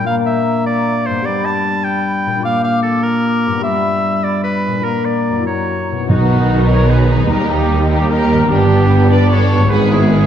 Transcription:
Already playing: harp A#2 A#3
0.00 harp D4
0.05 clarinet A#3, harp F4, oboe F5
0.09 flute section A#5
0.26 oboe E5
0.66 oboe D5
1.05 harp G2, oboe C5
1.13 harp B3
1.17 harp D4
1.22 harp G4, oboe D5
1.26 clarinet G3, flute section B5
1.45 oboe A5
1.84 oboe G5, flute section B5
2.26 harp A#2
2.31 harp A#3
2.36 harp D4
2.40 harp F4, flute section D6
2.45 clarinet A#3, oboe F5
2.64 oboe F5
2.83 oboe A4
3.03 oboe A#4, flute section D6
3.47 harp G2
3.51 harp B3
3.56 harp D4
3.60 harp G4, oboe E5
3.64 clarinet G3, flute section B5
4.24 oboe D5, flute section B5
4.43 oboe B4
4.68 harp A#2
4.72 harp A#3
4.77 harp D4
4.81 clarinet A#3, harp F4, oboe A#4
4.87 flute section A#5
5.05 oboe D5
5.30 harp F#2
5.34 harp A#3
5.38 harp E4
5.43 harp F#4, clarinet F#4, oboe C#5
5.47 flute section A#5
5.92 harp B2
5.96 harp B3
6.00 harp D#4
6.05 violin section D#4, harp F#4
6.09 double bass section B1, timpani B2, cello section B2, viola section D#3 B3, violin section D#4, trumpet section F#4
6.69 violin section A#4, trumpet section C#5
6.89 violin section G#4, trumpet section B4
7.13 harp D#3
7.17 harp A#3
7.22 harp D#4
7.26 harp G4
7.30 double bass section D#2, cello section D#2, viola section G3 A#3, violin section G4, trumpet section A#4
7.50 violin section D#4, trumpet section G4
7.90 violin section D#4, trumpet section G4
8.09 violin section G4, trumpet section A#4
8.33 harp G2
8.38 harp B3
8.42 harp D4
8.46 viola section B3, harp G4, trumpet section G4
8.50 double bass section G1, cello section G2, violin section B3 D4
9.09 violin section B4, trumpet section D5
9.30 violin section A4, trumpet section C#5
9.53 harp G#2
9.57 harp G#3
9.62 harp B3
9.66 double bass section G#1, cello section G#2, viola section D#3 G#3, harp B4, trumpet section B4
9.71 violin section B3 G#4
9.91 violin section E4, trumpet section G#4

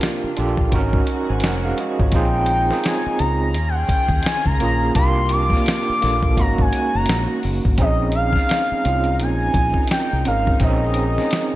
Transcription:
Already playing: string section C3 A#3 D4 F4, tine electric piano D4 F4 G4 A#4, soft synth lead D5
0.01 snare, closed hi-hat
0.24 muted fingered electric bass stroke
0.37 fingered electric bass A#1, tine electric piano D4 F4 G4 A4, closed hi-hat
0.57 kick
0.71 fingered electric bass G#1, string section G#3 C#4 F#4, tine electric piano C4 D#4 F#4, kick, closed hi-hat
0.76 tine electric piano C#4 A#4
0.93 kick
1.07 closed hi-hat
1.29 fingered electric bass G#1, tine electric piano C5 G#5
1.40 snare, closed hi-hat
1.44 fingered electric bass F1, tine electric piano A#4 F#5
1.65 tine electric piano G#4 F5
1.78 tine electric piano F#4 D#5, closed hi-hat
2.00 fingered electric bass G#1, tine electric piano F4 C#5, kick
2.12 fingered electric bass A#1, string section A#3 D#4, tine electric piano C4 D#4 F4, soft synth lead G5, kick, closed hi-hat
2.16 tine electric piano G#4
2.46 closed hi-hat
2.70 tine electric piano C4 D#4 F4 G#4, snare
2.84 soft synth lead G#5, snare, closed hi-hat
3.06 muted fingered electric bass stroke
3.19 fingered electric bass C#2, soft synth lead A#5, closed hi-hat
3.53 fingered electric bass D#2, string section D#3 C#4 F4 G#4, closed hi-hat
3.69 soft synth lead F#5
3.76 soft synth lead G5
3.89 muted fingered electric bass stroke, kick, closed hi-hat
4.09 fingered electric bass D#2, kick
4.23 soft synth lead G#5, snare, closed hi-hat
4.46 fingered electric bass C#2, soft synth lead A#5, kick
4.60 fingered electric bass A#1, tine electric piano A#3 C#4 F4 G#4, closed hi-hat
4.95 fingered electric bass C2, string section C3 A#3 D4 F4, tine electric piano A#3 D4 F4, soft synth lead C6, kick, closed hi-hat
4.99 tine electric piano G4
5.29 soft synth lead D6, closed hi-hat
5.50 kick, snare
5.66 snare, closed hi-hat
5.89 muted fingered electric bass stroke
6.01 fingered electric bass A#1, tine electric piano A#3 D4 F4 A4, snare, closed hi-hat
6.23 kick
6.37 fingered electric bass G#1, string section G#3 C#4 F#4, tine electric piano A#3 C4 D#4 F#4, soft synth lead A#5, kick, closed hi-hat
6.45 tine electric piano C#4
6.58 fingered electric bass G#1, soft synth lead G#5, kick
6.73 closed hi-hat
6.95 fingered electric bass F#1, soft synth lead A#5
7.06 fingered electric bass A#1, snare, closed hi-hat
7.43 fingered electric bass F#1, open hi-hat
7.65 fingered electric bass G#1, kick
7.78 fingered electric bass A#1, string section G#3 A#3 D#4, tine electric piano C4 C#4 D#4 G#4, soft synth lead D#5, kick, closed hi-hat
8.12 soft synth lead F5, closed hi-hat
8.33 kick, snare
8.49 snare, closed hi-hat
8.72 muted fingered electric bass stroke
8.84 fingered electric bass C2, tine electric piano C4 C#4 D#4 F4, closed hi-hat
9.04 closed hi-hat
9.20 fingered electric bass A#1, soft synth lead G#5, closed hi-hat
9.54 fingered electric bass A#1, kick, closed hi-hat
9.74 kick
9.88 soft synth lead G5, snare, closed hi-hat
10.13 fingered electric bass C2
10.25 fingered electric bass G#1, tine electric piano C4 C#4 D#4 A#4, soft synth lead F5, closed hi-hat
10.47 kick
10.60 fingered electric bass A#1, tine electric piano C4 C#4 D#4, soft synth lead D#5, kick, closed hi-hat
10.64 tine electric piano G#4
10.94 closed hi-hat
11.18 snare
11.31 snare, closed hi-hat

